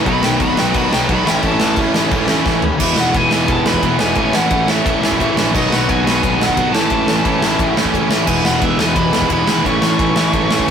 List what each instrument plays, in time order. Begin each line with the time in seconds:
0.04 picked electric bass B1, overdriven electric guitar B2 D#3 F#3 B3 F#4, lead electric guitar B5, kick, crash
0.09 distorted electric guitar D#4
0.21 picked electric bass B1, overdriven electric guitar B2 D#3 F#3 B3 F#4, lead electric guitar G5, snare
0.39 picked electric bass B1, overdriven electric guitar B2 D#3 F#3 B3 F#4, lead electric guitar B5, kick, crash
0.55 overdriven electric guitar B2 D#3 F#3 B3 F#4, distorted electric guitar D#4, lead electric guitar G5, snare
0.60 picked electric bass B1, distorted electric guitar B2
0.73 picked electric bass B1, overdriven electric guitar B2 D#3 F#3 B3 F#4, kick, crash
0.78 lead electric guitar B5
0.91 picked electric bass B1, overdriven electric guitar B2 D#3 F#3 B3 F#4, lead electric guitar G5, snare
1.07 picked electric bass B1, overdriven electric guitar B2 D#3 F#3 B3 F#4, kick, crash
1.12 distorted electric guitar F#3 D#4, lead electric guitar B5
1.25 picked electric bass A1, overdriven electric guitar A2 E3 A3 C#4 E4, snare
1.29 lead electric guitar G5
1.42 picked electric bass A1, overdriven electric guitar A2 E3 A3 C#4 E4, kick, crash
1.46 lead electric guitar A5
1.59 picked electric bass A1, overdriven electric guitar A2 E3 A3 C#4 E4, snare
1.75 picked electric bass A1, overdriven electric guitar A2 E3 A3 C#4 E4, kick, crash
1.93 picked electric bass A1, overdriven electric guitar A2 E3 A3 C#4 E4, snare
2.10 picked electric bass A1, overdriven electric guitar A2 E3 A3 C#4 E4, kick, crash
2.27 picked electric bass A1, overdriven electric guitar A2 E3 A3 C#4 E4, snare
2.31 distorted electric guitar A2 E3
2.46 picked electric bass A1, overdriven electric guitar A2 E3 A3 C#4 E4, kick, snare
2.62 picked electric bass D#2, overdriven electric guitar A2 E3 A3 C#4 E4, floor tom
2.78 picked electric bass E1, distorted electric guitar E2 B2, overdriven electric guitar E3 G#3 B3 E4, kick, crash
2.83 distorted electric guitar E3, lead electric guitar E5
2.96 picked electric bass E1, overdriven electric guitar E3 G#3 B3 E4, lead electric guitar F#5, snare
3.14 picked electric bass E1, overdriven electric guitar E3 G#3 B3 E4, lead electric guitar G#5, kick, ride
3.31 picked electric bass E1, overdriven electric guitar E3 G#3 B3 E4, lead electric guitar G#5, snare
3.47 picked electric bass E1, overdriven electric guitar E3 G#3 B3 E4, lead electric guitar A5, kick, ride
3.66 picked electric bass E1, distorted electric guitar B2, overdriven electric guitar E3 G#3 B3 E4, lead electric guitar B5, snare
3.70 distorted electric guitar E2
3.74 kick
3.82 picked electric bass E1, distorted electric guitar E2 B2, overdriven electric guitar E3 G#3 B3 E4, kick, ride
3.86 distorted electric guitar E3
3.99 picked electric bass E1, overdriven electric guitar E3 G#3 B3 E4, lead electric guitar G#5, snare
4.15 picked electric bass A1, overdriven electric guitar A2 E3 A3 C#4 E4, kick, ride
4.33 picked electric bass A1, overdriven electric guitar A2 E3 A3 C#4 E4, lead electric guitar F#5, snare
4.50 picked electric bass A1, overdriven electric guitar A2 E3 A3 C#4 E4, kick, ride
4.67 picked electric bass A1, overdriven electric guitar A2 E3 A3 C#4, distorted electric guitar E4, lead electric guitar E5, snare
4.71 overdriven electric guitar E4
4.84 picked electric bass A1, overdriven electric guitar A2 E3 A3 C#4 E4, kick, ride
5.01 picked electric bass A1, overdriven electric guitar A2 E3 A3 C#4 E4, snare
5.12 kick
5.18 picked electric bass A1, overdriven electric guitar A2 E3 A3 C#4 E4, kick, ride
5.35 picked electric bass A#1, overdriven electric guitar A2 E3 A3 C#4 E4, snare
5.53 picked electric bass B1, overdriven electric guitar B2 D#3 F#3 B3 F#4, lead electric guitar D#5, kick, crash
5.57 distorted electric guitar D#4
5.70 picked electric bass B1, overdriven electric guitar B2 D#3 F#3 B3 F#4, lead electric guitar F#5, snare
5.87 picked electric bass B1, overdriven electric guitar B2 D#3 F#3 B3 F#4, lead electric guitar G#5, kick, ride
6.04 picked electric bass B1, overdriven electric guitar B2 D#3 F#3 B3 F#4, distorted electric guitar D#4, lead electric guitar G#5, snare
6.10 distorted electric guitar B2
6.21 picked electric bass B1, overdriven electric guitar B2 D#3 F#3 B3 F#4, kick, ride
6.39 picked electric bass B1, overdriven electric guitar B2 D#3 F#3 B3 F#4, snare
6.47 lead electric guitar F#5, kick
6.56 picked electric bass B1, overdriven electric guitar B2 D#3 F#3 B3 F#4, kick, ride
6.61 distorted electric guitar D#4
6.73 picked electric bass A1, overdriven electric guitar A2 E3 A3 C#4 E4, lead electric guitar A5, snare
6.90 picked electric bass A1, overdriven electric guitar A2 E3 A3 C#4 E4, kick, ride
7.08 picked electric bass A1, overdriven electric guitar A2 E3 A3 C#4 E4, snare
7.24 picked electric bass A1, overdriven electric guitar A2 E3 A3 C#4 E4, kick, ride
7.42 picked electric bass A1, overdriven electric guitar A2 E3 A3 C#4 E4, snare
7.58 picked electric bass A1, overdriven electric guitar A2 E3 A3 C#4 E4, kick, ride
7.76 picked electric bass A1, overdriven electric guitar A2 E3 A3 C#4 E4, snare
7.85 kick
7.92 picked electric bass A1, overdriven electric guitar A2 E3 A3 C#4 E4, kick, ride
8.09 picked electric bass A1, overdriven electric guitar A2 E3 A3 C#4 E4, snare
8.25 picked electric bass E1, distorted electric guitar E2 B2, overdriven electric guitar E3 G#3 B3 E4, lead electric guitar G#5, kick, crash
8.43 picked electric bass E1, overdriven electric guitar E3 G#3 B3 E4, lead electric guitar F#5, snare
8.59 picked electric bass E1, overdriven electric guitar E3 G#3 B3 E4, kick, ride
8.64 lead electric guitar E5
8.77 picked electric bass E1, overdriven electric guitar E3 G#3 B3 E4, lead electric guitar G#5, snare
8.82 distorted electric guitar E3
8.95 picked electric bass E1, overdriven electric guitar E3 G#3 B3 E4, lead electric guitar B5, kick, ride
9.11 picked electric bass E1, distorted electric guitar B2, overdriven electric guitar E3 G#3 B3 E4, snare
9.16 distorted electric guitar E2
9.22 kick
9.28 picked electric bass E1, distorted electric guitar E2 B2, overdriven electric guitar E3 G#3 B3 E4, kick, ride
9.33 lead electric guitar B5
9.46 picked electric bass G#1, overdriven electric guitar E3 G#3 B3 E4, snare
9.51 lead electric guitar B5
9.64 picked electric bass A1, overdriven electric guitar A2 E3 A3 C#4 E4, lead electric guitar C#6, kick, ride
9.81 picked electric bass A1, overdriven electric guitar A2 E3 A3 C#4 E4, lead electric guitar C#6, snare
9.97 picked electric bass A1, overdriven electric guitar A2 E3 A3 C#4 E4, kick, ride
10.15 picked electric bass A1, overdriven electric guitar A2 E3 A3 C#4 E4, snare
10.20 distorted electric guitar A2
10.32 picked electric bass A1, overdriven electric guitar A2 E3 A3 C#4 E4, kick, ride
10.49 picked electric bass A1, overdriven electric guitar A2 E3 A3 C#4 E4, snare
10.53 distorted electric guitar A2
10.60 kick
10.66 overdriven electric guitar A2 E3